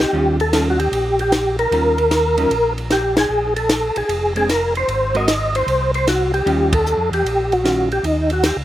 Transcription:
0.00 0.13 F#3 medium
0.00 0.13 C4 medium
0.00 0.13 D#4 medium
0.00 0.37 G4 medium
0.13 0.88 D#2 medium
0.13 0.37 D#3 medium
0.13 0.37 G3 medium
0.13 0.37 C#4 medium
0.13 0.37 F4 medium
0.40 0.68 A4 medium
0.40 ride soft
0.53 0.77 D#3 medium
0.53 0.77 G3 medium
0.53 0.77 C#4 medium
0.53 0.77 F4 medium
0.53 snare medium
0.53 hi-hat pedal soft
0.53 ride medium
0.70 0.79 F#4 medium
0.79 1.19 G4 medium
0.79 ride soft
0.92 1.67 A#1 medium
0.92 ride medium
1.19 1.56 G4 loud
1.19 ride soft
1.32 snare medium
1.32 hi-hat pedal soft
1.32 ride medium
1.59 2.73 A#4 loud
1.59 ride soft
1.71 2.46 D#2 medium
1.71 1.95 D#3 soft
1.71 1.95 G3 medium
1.71 1.95 C#4 medium
1.71 1.96 F4 medium
1.71 ride soft
1.98 ride soft
2.11 snare medium
2.11 hi-hat pedal medium
2.11 ride medium
2.37 2.49 D#3 medium
2.37 2.49 G3 medium
2.37 2.49 C#4 medium
2.37 2.50 F4 medium
2.37 ride soft
2.50 3.26 A#1 medium
2.50 ride medium
2.78 ride soft
2.90 3.16 G4 medium
2.90 snare medium
2.90 hi-hat pedal soft
2.90 ride medium
3.17 3.54 G#4 loud
3.17 snare medium
3.17 ride medium
3.29 3.91 A#1 medium
3.56 3.97 A4 medium
3.56 ride soft
3.69 snare medium
3.69 hi-hat pedal medium
3.69 ride medium
3.96 4.03 A#1 soft
3.96 4.33 G#4 medium
3.96 ride medium
4.09 4.84 F1 medium
4.09 ride medium
4.36 4.47 G#3 medium
4.36 4.48 C4 medium
4.36 4.48 D4 medium
4.36 4.50 G#4 medium
4.36 ride soft
4.49 4.74 A#4 medium
4.49 snare medium
4.49 hi-hat pedal medium
4.49 ride medium
4.75 5.16 C5 medium
4.75 ride soft
4.88 5.63 G#1 medium
4.88 ride medium
5.14 5.26 G#3 medium
5.14 5.26 C4 medium
5.14 5.26 F#4 medium
5.14 5.27 A#4 medium
5.14 5.56 D#5 medium
5.14 ride soft
5.28 snare medium
5.28 hi-hat pedal medium
5.28 ride medium
5.55 5.91 C5 loud
5.55 ride medium
5.67 6.42 C2 medium
5.67 ride soft
5.94 6.08 C5 medium
5.94 ride soft
6.07 6.32 F#4 medium
6.07 snare medium
6.07 hi-hat pedal medium
6.07 ride medium
6.34 6.74 G4 medium
6.34 ride soft
6.46 6.95 D#2 medium
6.46 6.70 D#3 medium
6.46 6.70 G3 medium
6.46 6.70 C#4 medium
6.46 6.70 F4 medium
6.46 ride soft
6.73 7.10 A4 loud
6.73 kick medium
6.73 ride medium
6.86 hi-hat pedal medium
6.98 7.10 F2 medium
7.11 7.23 E2 medium
7.11 7.53 G4 medium
7.11 ride soft
7.24 7.99 A#1 medium
7.24 ride medium
7.52 7.89 F#4 medium
7.52 ride soft
7.64 7.88 D#3 medium
7.64 7.88 G3 soft
7.64 7.88 C#4 medium
7.64 7.88 F4 medium
7.64 snare medium
7.64 hi-hat pedal soft
7.64 ride medium
7.92 8.05 G4 medium
7.92 ride soft
8.03 8.52 D#2 medium
8.03 8.31 D#4 medium
8.03 ride medium
8.30 8.45 F#4 medium
8.30 ride soft
8.43 8.57 G4 medium
8.43 snare medium
8.43 hi-hat pedal medium
8.43 ride medium
8.56 8.64 C#2 medium

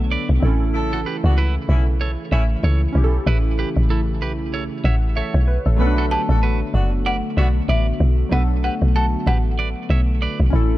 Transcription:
0.00 0.17 B1 loud
0.00 0.38 D3 medium
0.00 0.44 F#3 medium
0.00 0.44 A3 medium
0.00 10.78 A3 medium
0.00 0.38 B3 medium
0.00 0.44 B3 medium
0.00 0.44 D4 medium
0.00 0.38 F#4 medium
0.00 0.44 A4 medium
0.11 0.28 B4 medium
0.11 0.28 D5 medium
0.29 0.39 B1 medium
0.40 1.05 A1 loud
0.40 5.75 C#3 medium
0.40 5.75 E3 medium
0.40 0.49 C4 medium
0.40 5.75 E4 medium
0.40 2.91 E4 medium
0.45 2.91 C#4 medium
0.45 2.92 A4 medium
0.74 0.99 C#4 loud
0.74 0.99 E4 loud
0.74 0.99 A4 loud
0.93 1.00 F#4 medium
0.93 1.00 A4 medium
1.06 1.16 G4 medium
1.06 1.16 B4 medium
1.24 1.58 C#2 medium
1.24 1.34 B3 medium
1.24 1.34 D4 medium
1.24 1.34 F#4 medium
1.38 1.55 E4 medium
1.38 1.54 B4 medium
1.69 2.17 B1 loud
1.69 1.83 A3 medium
1.69 1.83 C#4 medium
1.69 1.83 E4 medium
2.01 2.11 A4 medium
2.01 2.10 C#5 medium
2.32 2.56 A1 loud
2.32 2.43 A3 medium
2.32 2.43 C#4 medium
2.32 2.43 E4 loud
2.32 2.43 C#5 medium
2.32 2.42 E5 medium
2.63 2.88 C#2 loud
2.63 2.81 A4 medium
2.63 2.81 C#5 medium
2.92 3.19 B1 loud
2.92 5.42 C#4 medium
2.92 5.44 E4 medium
2.97 3.04 G4 medium
3.04 4.85 A4 medium
3.27 3.65 A1 loud
3.27 3.37 E4 medium
3.27 3.37 B4 loud
3.59 3.69 G4 medium
3.59 3.68 B4 medium
3.76 4.23 A1 medium
3.90 4.00 E4 medium
3.90 4.00 A4 medium
4.21 4.69 B1 loud
4.21 4.32 G4 medium
4.21 4.31 B4 medium
4.54 4.64 A4 medium
4.54 4.63 C#5 medium
4.84 5.22 A1 loud
4.84 4.95 C#5 medium
4.84 4.95 E5 medium
4.84 5.14 F#5 medium
5.16 5.34 A4 medium
5.16 5.33 C#5 medium
5.16 5.33 E5 medium
5.34 5.58 B1 loud
5.34 5.47 C#5 medium
5.48 5.65 B4 medium
5.66 5.81 A1 medium
5.66 5.80 A4 medium
5.77 6.17 B1 loud
5.77 10.49 D3 medium
5.77 8.27 F#3 medium
5.77 8.27 A3 medium
5.77 8.28 B3 medium
5.77 10.49 B3 medium
5.77 5.87 C#4 medium
5.77 6.04 D4 loud
5.77 10.49 F#4 medium
5.77 6.04 F#4 loud
5.77 6.04 B4 loud
5.82 8.29 A4 medium
5.87 8.32 D4 medium
5.98 6.06 F#4 medium
5.98 6.05 A4 medium
6.11 6.21 G4 medium
6.11 6.21 B4 medium
6.11 7.09 A5 loud
6.29 6.63 A1 medium
6.29 6.40 D4 medium
6.29 6.40 F#4 medium
6.29 6.40 A4 medium
6.43 6.60 F#4 medium
6.43 6.59 B4 medium
6.74 7.22 F#1 medium
6.74 6.89 B3 medium
6.74 6.89 D4 medium
6.74 6.89 F#4 medium
7.06 7.16 B4 medium
7.06 7.16 D5 medium
7.06 7.65 F#5 loud
7.37 7.61 B1 medium
7.37 7.48 B3 loud
7.37 7.48 D4 medium
7.37 7.48 F#4 loud
7.37 7.48 C#5 medium
7.37 7.47 E5 medium
7.69 7.93 A1 medium
7.69 7.86 B4 medium
7.69 7.86 D5 medium
7.69 8.34 E5 medium
8.00 8.24 B1 loud
8.29 8.70 B1 loud
8.29 10.48 F#3 medium
8.29 10.48 A3 medium
8.29 10.49 B3 medium
8.29 10.49 D4 medium
8.29 8.43 F#4 medium
8.29 8.42 B4 loud
8.29 8.62 F#5 medium
8.34 10.50 A4 medium
8.64 8.74 G4 medium
8.64 8.74 B4 medium
8.64 8.78 F#5 medium
8.82 9.16 B1 loud
8.96 9.06 F#4 medium
8.96 9.05 A4 medium
8.96 9.10 A5 loud
9.27 9.75 A1 loud
9.27 9.37 G4 medium
9.27 9.37 B4 medium
9.27 10.49 F#5 medium
9.59 9.69 B4 medium
9.59 9.68 D5 medium
9.90 10.28 B1 loud
9.90 10.01 C#5 medium
9.90 10.00 E5 medium
10.22 10.39 B4 medium
10.22 10.38 D5 medium
10.40 10.50 B1 medium
10.50 10.78 A1 loud
10.50 10.78 C#3 medium
10.50 10.78 E3 medium
10.50 10.78 C#4 medium
10.50 10.78 E4 medium
10.55 10.78 A4 medium

